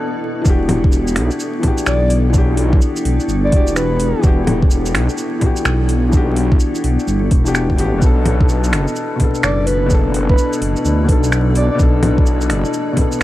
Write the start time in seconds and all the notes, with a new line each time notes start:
Already playing: B2 B3 D4 E4 A4 D5
0.42 E1 E3 D4, kick, shaker
0.47 F#4 G4
0.69 open hi-hat, low bongo
0.84 kick
0.92 shaker
1.08 shaker
1.16 B1, finger snap, open hi-hat
1.31 shaker
1.40 shaker
1.59 E3 D4, open hi-hat, low bongo
1.63 F#4 G4, kick
1.78 shaker
1.86 B1 D5, finger snap, shaker
2.10 open hi-hat, shaker
2.30 E3 D4, shaker
2.34 F#4 G4, kick
2.57 open hi-hat
2.73 kick
2.81 shaker
2.96 shaker
3.05 B1, open hi-hat
3.20 shaker
3.28 G1, shaker
3.44 D5
3.48 E3 D4, open hi-hat
3.53 E1 F#4 G4, kick
3.67 shaker
3.76 B4, finger snap, shaker
3.99 E1, open hi-hat, shaker
4.19 E3 D4
4.23 E1 F#4 G4, kick, shaker
4.47 open hi-hat, low bongo
4.62 kick
4.71 shaker
4.86 shaker
4.94 B1, finger snap, open hi-hat
5.09 shaker
5.18 shaker
5.38 E3 D4, kick, open hi-hat, low bongo
5.44 F#4 G4
5.56 shaker
5.65 B1, finger snap, shaker
5.89 open hi-hat, shaker
6.09 E3 D4, shaker
6.13 F#4 G4, kick
6.36 open hi-hat
6.52 kick
6.60 shaker
6.75 shaker
6.84 B1, open hi-hat
6.99 shaker
7.07 G1, shaker
7.31 E1, kick, open hi-hat
7.44 E3 D4 F#4, shaker
7.48 G4
7.55 finger snap, shaker
7.70 kick
7.76 A1 E3 D4 F#4 G4, open hi-hat, shaker
7.93 E1
7.98 B1 B2 B3, kick, shaker
8.04 D4 A4
8.26 E4, open hi-hat, low bongo
8.41 kick
8.49 shaker
8.62 A4 D5, shaker
8.72 F#1, finger snap, open hi-hat
8.88 shaker
8.96 shaker
9.16 B2 B3, kick, open hi-hat, low bongo
9.21 D4 A4
9.35 shaker
9.43 F#1 D5, finger snap, shaker
9.67 B4, open hi-hat, shaker
9.86 B2 B3, shaker
9.91 D4 A4, kick
10.14 open hi-hat
10.29 B4, kick
10.38 shaker
10.53 shaker
10.61 F#1, open hi-hat
10.76 shaker
10.85 D2, shaker
11.04 B2 B3
11.09 B1 D4 A4, kick, open hi-hat
11.24 shaker
11.32 finger snap, shaker
11.55 B1 D5, open hi-hat, shaker
11.71 B2 D5
11.77 B1 B3 D4, kick, shaker
11.83 A4
12.03 open hi-hat, low bongo
12.18 kick
12.26 shaker
12.41 shaker
12.50 F#1, finger snap, open hi-hat
12.65 shaker
12.73 shaker
12.93 B2 B3
12.97 D4, kick, open hi-hat, low bongo
13.01 A4
13.12 shaker